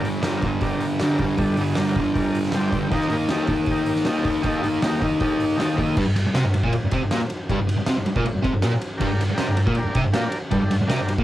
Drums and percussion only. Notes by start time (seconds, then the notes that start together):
0.05 open hi-hat
0.23 snare, open hi-hat
0.42 kick, open hi-hat
0.61 kick, open hi-hat
0.81 open hi-hat
1.00 snare, open hi-hat
1.19 kick, open hi-hat
1.38 kick, open hi-hat
1.57 open hi-hat
1.75 snare, open hi-hat
1.95 kick, open hi-hat
2.16 kick, open hi-hat
2.35 open hi-hat
2.43 snare
2.52 snare, open hi-hat
2.72 kick, open hi-hat
2.92 kick, open hi-hat
3.01 snare
3.10 open hi-hat
3.29 snare, open hi-hat
3.47 kick, open hi-hat
3.66 kick, open hi-hat
3.86 open hi-hat
3.96 snare
4.05 snare, open hi-hat
4.25 kick, open hi-hat
4.43 kick, open hi-hat
4.64 open hi-hat
4.82 snare, open hi-hat
5.02 kick, open hi-hat
5.20 kick, open hi-hat
5.40 open hi-hat
5.60 snare, open hi-hat
5.78 kick, open hi-hat
5.97 kick, crash
6.16 snare, ride
6.35 snare, ride
6.54 ride
6.63 kick
6.73 ride
6.91 kick, ride
7.11 snare, ride
7.30 ride
7.50 kick, ride
7.69 ride
7.86 snare, ride
8.06 ride
8.16 kick
8.25 ride
8.44 kick, ride
8.62 snare, ride
8.81 ride
9.01 kick, crash
9.21 snare, ride
9.38 snare, ride
9.57 ride
9.67 kick
9.75 ride
9.95 kick, ride
10.14 snare, ride
10.32 ride
10.51 kick, ride
10.71 snare, ride
10.90 snare, ride
11.08 ride
11.18 kick